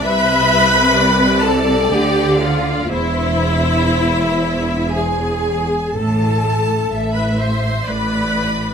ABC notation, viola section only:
X:1
M:3/4
L:1/16
Q:1/4=62
K:C
V:1 name="Viola section"
B6 A2 G2 F2 | E8 ^G4 | A4- A B c2 B4 |]